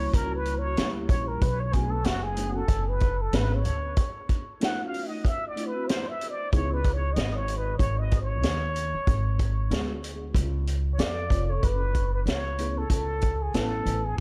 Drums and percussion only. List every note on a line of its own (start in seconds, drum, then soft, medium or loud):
0.14 kick medium
0.14 closed hi-hat loud
0.45 closed hi-hat medium
0.77 snare loud
0.77 closed hi-hat loud
1.09 kick medium
1.09 closed hi-hat medium
1.41 kick loud
1.41 closed hi-hat medium
1.73 kick medium
1.73 closed hi-hat medium
2.04 snare loud
2.04 closed hi-hat medium
2.37 closed hi-hat medium
2.68 kick medium
2.68 closed hi-hat medium
3.00 kick medium
3.00 closed hi-hat medium
3.33 snare loud
3.33 closed hi-hat loud
3.65 closed hi-hat medium
3.97 kick loud
3.97 closed hi-hat medium
4.29 kick medium
4.29 closed hi-hat medium
4.61 snare loud
4.61 closed hi-hat medium
4.94 open hi-hat medium
5.25 kick medium
5.25 closed hi-hat loud
5.57 closed hi-hat medium
5.89 snare loud
5.89 closed hi-hat loud
6.21 closed hi-hat medium
6.52 kick loud
6.52 closed hi-hat medium
6.84 kick medium
6.84 closed hi-hat medium
7.16 snare loud
7.16 closed hi-hat medium
7.48 closed hi-hat medium
7.79 kick medium
7.79 closed hi-hat loud
8.11 kick medium
8.11 closed hi-hat medium
8.43 snare loud
8.43 closed hi-hat loud
8.76 closed hi-hat medium
9.07 kick loud
9.07 closed hi-hat medium
9.39 kick medium
9.39 closed hi-hat medium
9.71 snare loud
9.71 closed hi-hat medium
10.04 closed hi-hat medium
10.35 kick medium
10.35 closed hi-hat loud
10.67 closed hi-hat medium
10.99 snare loud
10.99 closed hi-hat loud
11.30 kick medium
11.30 closed hi-hat medium
11.63 kick loud
11.63 closed hi-hat medium
11.95 kick medium
11.95 closed hi-hat medium
12.27 snare loud
12.27 closed hi-hat medium
12.58 closed hi-hat medium
12.90 kick medium
12.90 closed hi-hat medium
13.21 kick medium
13.21 closed hi-hat medium
13.54 snare loud
13.54 closed hi-hat medium
13.86 closed hi-hat medium